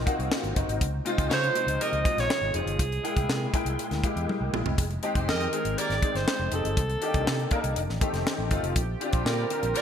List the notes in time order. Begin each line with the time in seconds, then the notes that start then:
Already playing: C3 F#3 A#3 C4 D#4 F4 F#4
0.06 A#3 C4 D#4 F#4, kick, closed hi-hat
0.19 C2, closed hi-hat
0.32 snare
0.43 G#1, closed hi-hat
0.55 F#1 A#3 C4 D#4 F#4, kick, closed hi-hat
0.68 G#1, closed hi-hat
0.80 C#2 C3 F3 D#4, kick, closed hi-hat
1.05 G#3 C4 D#4 F4, closed hi-hat
1.17 C#2 G#3 F4 C5, kick, closed hi-hat
1.29 C#3 G#3 F4 C5 C#5, snare
1.44 closed hi-hat
1.55 G#3 C4 D#4 F4, closed hi-hat
1.67 C#2, closed hi-hat
1.79 A#3 G4 A#4 D#5, closed hi-hat
1.93 C#2, closed hi-hat
2.04 G#3 C4 D#4 F4, kick, closed hi-hat
2.17 A#1 C#5, snare, closed hi-hat
2.30 snare
2.41 G#1
2.54 F1 G#3 C4 D#4 F4 G#4, closed hi-hat
2.66 G1, closed hi-hat
2.79 C2 A#2 G#3 E4, kick, closed hi-hat
2.92 closed hi-hat
3.03 G#3 A#3 E4 G5, closed hi-hat
3.17 C2, kick, closed hi-hat
3.29 C3, snare
3.53 G#3 A#3 E4 G5, kick, closed hi-hat
3.65 C2, closed hi-hat
3.79 closed hi-hat
3.91 D2, snare, closed hi-hat
4.03 G#3 A#3 E4 G4, kick, closed hi-hat
4.16 E2, closed hi-hat
4.29 high tom
4.41 C2
4.53 A#1 G#3 A#3 E4 G#4, mid tom
4.66 C2, floor tom
4.78 F1 D#3 G5, kick, closed hi-hat
4.91 closed hi-hat
5.03 G#3 C4 D#4 G4, closed hi-hat
5.15 F1 G#3 G4 C5, kick, closed hi-hat
5.28 F2 C4 G#4 A#4 D#5, snare
5.41 closed hi-hat
5.52 G#3 C4 D#4 G#4, closed hi-hat
5.65 G#1, closed hi-hat
5.78 A#3 G4 A#4 D5, closed hi-hat
5.90 G#1, snare, closed hi-hat
6.02 G#3 C4 D#4 G#4, kick, closed hi-hat
6.15 G1 C5, snare, closed hi-hat
6.28 snare
6.39 F1
6.51 F1 G#3 C4 D#4 G4 A4, closed hi-hat
6.65 G1, closed hi-hat
6.76 C2 D#3 A#3 C4, kick, closed hi-hat
6.90 closed hi-hat
7.01 A#3 D4 D#4 G4, closed hi-hat
7.14 C2, kick, closed hi-hat
7.27 C3, snare
7.39 closed hi-hat
7.51 A#3 D4 D#4 A#4, kick, closed hi-hat
7.64 C2, closed hi-hat
7.76 F1 D#3 A3 G4, closed hi-hat
7.89 A1, snare
8.01 A3 C4 D#4 G4, kick, closed hi-hat
8.13 F1, snare, closed hi-hat
8.27 snare
8.38 A1
8.51 G1 A3 C4 D#4 F4, kick, closed hi-hat
8.63 F1, closed hi-hat
8.76 A#1 D3 C4, kick, closed hi-hat
9.01 C4 D4 F4 G4, closed hi-hat
9.13 A#1 G3 F4 C5, kick, closed hi-hat
9.25 A#2 G3 F4 A#4 D5, snare
9.50 C4 D4 F4 A#4, closed hi-hat
9.63 A#1, closed hi-hat
9.74 G3 F4 A#4 D5, closed hi-hat